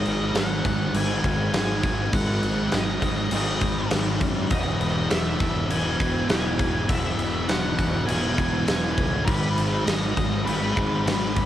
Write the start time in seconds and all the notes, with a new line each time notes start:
Already playing: G#2 D#3 G#3 D#5
0.05 G#1, crash
0.35 G#1 G#2 D#3 G#3 F#5, snare, crash
0.65 G#1 D#3 G#3, kick, crash
0.93 G#1 G#2 D#3 G#3 G#5, crash
1.23 G#1 D#3 G#3, kick, crash
1.53 G#1 G#2 D#3 G#3, snare, crash
1.57 G#5
1.83 kick, crash
2.12 G#1 G#2 D#3 G#3 F#5, kick, crash
2.42 G#1, crash
2.71 G#1 G#2 D#3 G#3 D#5, snare, crash
3.00 G#1 D#3 G#3, kick, crash
3.31 G#1 G#2 D#3 G#3, crash
3.61 D#3 G#3, kick, crash
3.91 G#1 G#2 D#3 G#3, snare, crash
4.21 F#2, kick, crash
4.50 E1 E2 B2 D#5, kick, crash
4.54 E3
4.80 E1, crash
5.09 E1 E2 B2 E3 E5, snare, crash
5.39 E1 B2 E3, kick, crash
5.69 E1 E2 B2 E3 G#5, crash
6.00 E1 B2 E3, kick, crash
6.28 E1 E2 B2 E3 G#5, snare, crash
6.59 kick, crash
6.87 E1 E2 B2 E3 E5, kick, crash
7.18 E1, crash
7.48 E1 E2 B2 E3 F#5, snare, crash
7.77 E1 B2 E3, kick, crash
8.06 E2 B2 E3 G#5, crash
8.10 E1
8.37 B2 E3, kick, crash
8.65 E1 E2 B2 E3 G#5, snare, crash
8.98 C#2, kick, crash
9.25 G#1 G#2 D#3 G#3 B4, kick, crash
9.58 G#1, crash
9.85 G#1 G#2 D#3 G#3 D#5, snare, crash
10.16 G#1 D#3 G#3, kick, crash
10.44 G#1 G#2 D#3 G#3 B4, crash
10.76 G#1 D#3 G#3, kick, crash
11.06 G#1 G#2 D#3 G#3, snare, crash
11.36 kick, crash